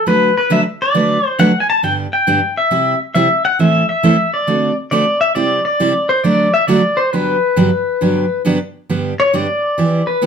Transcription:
0.06 0.29 D3 soft
0.06 0.29 F#3 medium
0.06 0.29 A3 medium
0.06 0.29 D4 medium
0.06 0.29 F#4 medium
0.06 0.30 B4 medium
0.06 0.34 B4 loud
0.38 0.51 B4 medium
0.50 0.62 D3 medium
0.50 0.62 F#3 medium
0.50 0.62 A3 medium
0.50 0.62 D4 medium
0.50 0.63 F#4 medium
0.50 0.63 B4 medium
0.50 0.60 E5 loud
0.82 1.27 D5 loud
0.94 1.17 D3 medium
0.94 1.17 F#3 medium
0.94 1.17 A3 medium
0.94 1.17 D4 medium
0.94 1.18 F#4 medium
0.94 1.18 B4 medium
1.27 1.41 C5 loud
1.39 1.51 D3 medium
1.39 1.51 F#3 medium
1.39 1.51 A3 medium
1.39 1.51 D4 medium
1.39 1.51 F#4 medium
1.39 1.51 B4 medium
1.39 1.60 F#5 medium
1.60 1.68 G#5 medium
1.70 1.82 A5 loud
1.83 2.06 G2 medium
1.83 2.06 D3 medium
1.83 2.06 G3 medium
1.83 2.06 B3 medium
1.83 2.06 D4 medium
1.83 2.06 G4 medium
1.83 1.92 G5 loud
2.13 2.58 G5 medium
2.27 2.39 G2 medium
2.27 2.39 D3 medium
2.27 2.39 G3 medium
2.27 2.39 B3 medium
2.27 2.39 D4 medium
2.27 2.39 G4 medium
2.57 2.98 E5 medium
2.71 2.94 C3 medium
2.71 2.94 G3 medium
2.71 2.94 C4 medium
2.71 2.94 E4 medium
2.71 2.94 G4 medium
3.15 3.27 C3 medium
3.15 3.27 G3 medium
3.15 3.27 C4 medium
3.15 3.28 E4 medium
3.15 3.28 G4 medium
3.15 3.42 E5 medium
3.45 3.60 F#5 loud
3.59 3.82 A2 medium
3.59 3.82 E3 medium
3.59 3.82 A3 medium
3.59 3.82 C4 medium
3.59 3.83 E4 medium
3.59 3.83 A4 medium
3.59 3.88 E5 loud
3.89 4.30 E5 medium
4.03 4.15 A2 medium
4.03 4.16 E3 medium
4.03 4.16 A3 medium
4.03 4.16 C4 medium
4.03 4.16 E4 medium
4.03 4.16 A4 medium
4.34 4.74 D5 medium
4.47 4.70 D3 medium
4.47 4.70 A3 medium
4.47 4.71 C4 medium
4.47 4.71 F#4 medium
4.47 4.71 A4 medium
4.91 5.04 D3 medium
4.91 5.04 A3 medium
4.91 5.04 C4 medium
4.91 5.04 F#4 medium
4.91 5.04 A4 medium
4.91 5.20 D5 medium
5.21 5.35 E5 loud
5.35 5.58 C3 medium
5.35 5.59 G3 medium
5.35 5.59 C4 medium
5.35 5.59 E4 medium
5.35 5.59 G4 medium
5.35 5.63 D5 loud
5.65 6.06 D5 loud
5.80 5.92 C3 medium
5.80 5.92 G3 medium
5.80 5.92 C4 medium
5.80 5.93 E4 medium
5.80 5.93 G4 medium
6.09 6.25 C5 medium
6.23 6.47 D3 medium
6.23 6.47 F#3 medium
6.23 6.47 A3 medium
6.23 6.47 D4 medium
6.23 6.48 F#4 medium
6.23 6.53 D5 medium
6.54 6.67 E5 medium
6.67 6.80 D3 medium
6.67 6.81 F#3 medium
6.67 6.81 A3 medium
6.67 6.81 D4 medium
6.67 6.81 F#4 medium
6.67 6.98 D5 medium
6.97 7.12 C5 medium
7.13 7.36 G2 medium
7.13 7.36 D3 medium
7.13 7.36 F#3 medium
7.13 7.36 B3 medium
7.13 7.36 D4 medium
7.13 7.36 G4 medium
7.13 8.41 B4 medium
7.56 7.69 G2 medium
7.56 7.69 D3 medium
7.56 7.69 F#3 medium
7.56 7.69 B3 medium
7.56 7.69 D4 medium
7.56 7.69 G4 medium
8.01 8.24 G2 medium
8.01 8.24 D3 medium
8.01 8.24 F#3 medium
8.01 8.24 B3 medium
8.01 8.25 D4 medium
8.01 8.25 G4 medium
8.45 8.57 G2 medium
8.45 8.57 D3 medium
8.45 8.58 F#3 medium
8.45 8.58 B3 medium
8.45 8.58 D4 medium
8.45 8.58 G4 medium
8.89 9.13 G2 medium
8.89 9.13 D3 medium
8.89 9.13 G3 medium
8.89 9.13 B3 medium
8.89 9.13 D4 medium
8.89 9.13 G4 medium
9.20 9.34 C#5 medium
9.33 9.46 G2 medium
9.33 9.46 D3 medium
9.33 9.46 G3 medium
9.33 9.46 B3 medium
9.33 9.46 D4 medium
9.33 9.46 G4 medium
9.33 10.05 D5 medium
9.78 10.01 E3 medium
9.78 10.01 B3 medium
9.78 10.01 E4 medium
9.78 10.01 G4 medium
10.07 10.26 B4 medium
10.22 10.26 E3 medium
10.22 10.26 B3 medium
10.22 10.26 E4 medium
10.22 10.26 G4 medium

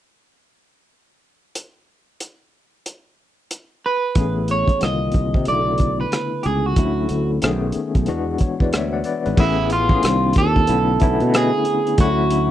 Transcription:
1.55 closed hi-hat soft
2.20 closed hi-hat soft
2.86 closed hi-hat soft
3.51 closed hi-hat soft
3.86 4.51 B4 medium
4.15 4.63 A1 medium
4.15 4.81 E3 medium
4.15 4.81 A3 medium
4.15 4.82 B3 medium
4.15 4.82 C#4 medium
4.15 4.82 G#4 medium
4.15 kick medium
4.15 closed hi-hat medium
4.48 4.83 C#5 medium
4.48 closed hi-hat medium
4.68 muted fretless electric bass stroke soft
4.68 kick medium
4.68 closed hi-hat soft
4.81 5.10 C2 medium
4.81 5.40 D3 medium
4.81 5.39 D#3 medium
4.81 5.39 A#3 medium
4.81 5.40 C4 medium
4.81 5.40 F4 medium
4.81 5.48 D#5 medium
4.81 cross-stick medium
4.81 closed hi-hat medium
5.12 5.32 C2 medium
5.12 kick medium
5.12 closed hi-hat soft
5.34 5.45 C3 medium
5.34 kick medium
5.45 6.04 B1 medium
5.45 6.62 C#3 medium
5.45 6.61 D3 medium
5.45 6.61 A3 medium
5.45 6.62 B3 medium
5.45 6.62 E4 medium
5.45 6.00 D5 medium
5.45 closed hi-hat medium
5.78 kick medium
5.78 closed hi-hat medium
6.01 6.43 B4 medium
6.12 cross-stick loud
6.12 closed hi-hat medium
6.43 6.74 C#2 medium
6.43 6.45 G4 soft
6.43 6.66 G#4 medium
6.43 closed hi-hat soft
6.66 7.30 F#4 medium
6.76 7.06 D2 medium
6.76 7.41 D3 medium
6.76 6.85 F3 soft
6.76 7.41 A3 medium
6.76 7.42 C#4 medium
6.76 7.43 E4 medium
6.76 kick medium
6.76 closed hi-hat medium
6.84 7.46 F#3 medium
7.09 7.39 D2 medium
7.09 closed hi-hat medium
7.42 7.71 B1 medium
7.42 7.50 D3 medium
7.42 8.00 A3 medium
7.42 8.00 B3 medium
7.42 8.01 C#4 medium
7.42 8.01 G#4 medium
7.42 cross-stick medium
7.42 closed hi-hat medium
7.49 8.03 D#3 medium
7.72 muted fretless electric bass stroke soft
7.72 closed hi-hat soft
7.95 8.06 B1 medium
7.95 kick medium
7.95 closed hi-hat soft
8.06 8.36 E2 medium
8.06 9.22 E3 medium
8.06 9.22 G#3 medium
8.06 9.22 B3 medium
8.06 9.22 D4 medium
8.06 9.23 F#4 medium
8.06 closed hi-hat medium
8.38 8.59 C#5 medium
8.38 kick medium
8.38 closed hi-hat soft
8.60 8.73 E2 medium
8.60 8.72 B4 medium
8.60 8.72 D5 medium
8.60 kick medium
8.73 9.02 D2 medium
8.73 8.92 C#5 soft
8.73 8.92 E5 medium
8.73 cross-stick loud
8.73 closed hi-hat medium
8.93 9.04 D5 medium
8.93 9.04 F#5 medium
9.04 9.25 B4 soft
9.04 9.24 D5 medium
9.04 closed hi-hat soft
9.26 9.37 G#1 medium
9.26 9.38 G#4 soft
9.26 9.56 B4 medium
9.26 closed hi-hat soft
9.37 9.95 A1 loud
9.37 9.81 E3 medium
9.37 9.82 A3 medium
9.37 9.82 B3 medium
9.37 9.82 C#4 medium
9.37 9.72 E4 medium
9.37 9.82 G#4 medium
9.37 kick loud
9.37 crash medium
9.70 10.38 F4 medium
9.70 closed hi-hat medium
9.89 10.02 E3 medium
9.89 10.03 A3 medium
9.89 10.03 B3 medium
9.89 10.03 C#4 medium
9.89 10.03 G#4 medium
9.89 kick medium
10.02 10.32 C2 medium
10.02 10.60 D#3 medium
10.02 10.61 A#3 medium
10.02 10.61 C4 medium
10.02 10.61 D4 medium
10.02 10.61 F4 medium
10.02 cross-stick loud
10.02 closed hi-hat medium
10.33 10.65 D#2 medium
10.33 kick medium
10.33 closed hi-hat medium
10.38 11.35 A4 loud
10.56 kick medium
10.67 10.97 B1 loud
10.67 10.97 D3 medium
10.67 10.97 A3 medium
10.67 10.97 B3 medium
10.67 10.97 C#4 medium
10.67 10.98 E4 medium
10.67 closed hi-hat medium
11.00 11.19 B1 medium
11.00 11.87 D3 medium
11.00 11.88 A3 medium
11.00 11.88 B3 medium
11.00 11.88 C#4 medium
11.00 11.88 E4 medium
11.00 kick medium
11.00 closed hi-hat medium
11.20 11.50 B2 medium
11.20 closed hi-hat soft
11.34 12.00 G#4 medium
11.34 cross-stick loud
11.34 closed hi-hat medium
11.65 closed hi-hat medium
11.87 closed hi-hat soft
11.98 12.51 D2 loud
11.98 12.42 D3 medium
11.98 12.43 F#3 medium
11.98 12.43 A3 medium
11.98 12.43 C#4 medium
11.98 12.43 E4 medium
11.98 12.51 F#4 medium
11.98 kick loud
11.98 closed hi-hat medium
12.31 closed hi-hat medium

